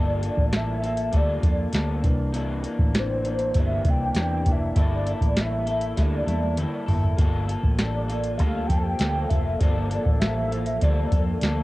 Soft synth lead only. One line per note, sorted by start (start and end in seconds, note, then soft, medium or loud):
0.00 0.58 D5 medium
0.56 1.15 E5 medium
1.16 2.02 D5 medium
2.99 3.61 C5 loud
3.60 3.91 E5 loud
3.90 4.53 G5 loud
4.52 4.79 E5 medium
4.79 5.42 D5 loud
5.41 6.04 E5 loud
6.02 6.91 D5 medium
7.80 8.37 D5 medium
8.38 8.69 F5 loud
8.67 8.79 G5 loud
8.78 8.85 A5 medium
8.83 9.31 G5 loud
9.29 9.60 E5 medium
9.59 10.19 D5 medium
10.20 10.84 E5 loud
10.83 11.63 D5 medium